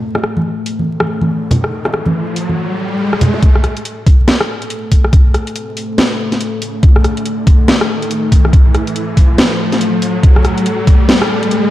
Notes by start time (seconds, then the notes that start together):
Already playing: A3 A4
0.02 riser
0.15 cross-stick, high bongo
0.24 cross-stick
0.37 high conga
0.66 open hi-hat
0.79 high conga
1.00 cross-stick, high conga
1.21 high conga
1.51 open hi-hat, high bongo, low conga
1.64 cross-stick
1.85 cross-stick, high bongo
1.93 cross-stick, high bongo
2.06 high conga
2.36 open hi-hat
2.49 high conga
3.13 cross-stick
3.21 open hi-hat, low conga
3.34 high bongo
3.43 A3 A4, kick, closed hi-hat, riser
3.55 cross-stick
3.64 cross-stick, closed hi-hat
3.77 closed hi-hat
3.85 closed hi-hat
4.06 kick, open hi-hat
4.28 snare, closed hi-hat
4.41 cross-stick
4.62 closed hi-hat
4.70 closed hi-hat
4.92 kick, open hi-hat
5.04 cross-stick
5.13 kick, closed hi-hat
5.34 cross-stick, closed hi-hat
5.47 closed hi-hat
5.56 closed hi-hat
5.77 open hi-hat
5.98 snare, closed hi-hat
6.32 snare, closed hi-hat
6.41 closed hi-hat
6.62 open hi-hat
6.83 kick, closed hi-hat
6.96 cross-stick
7.04 cross-stick, closed hi-hat
7.17 closed hi-hat
7.26 closed hi-hat
7.47 kick, open hi-hat
7.68 snare, closed hi-hat
7.81 cross-stick
8.02 closed hi-hat
8.11 closed hi-hat
8.32 kick, open hi-hat
8.45 cross-stick
8.53 kick, closed hi-hat
8.75 cross-stick, closed hi-hat
8.87 closed hi-hat
8.96 closed hi-hat
9.17 kick, open hi-hat
9.38 snare, closed hi-hat
9.72 snare, closed hi-hat
9.81 closed hi-hat
10.02 open hi-hat
10.23 kick, closed hi-hat
10.36 cross-stick
10.45 cross-stick, closed hi-hat
10.58 closed hi-hat
10.66 closed hi-hat
10.87 kick, open hi-hat
11.09 snare, closed hi-hat
11.22 cross-stick
11.43 closed hi-hat
11.51 closed hi-hat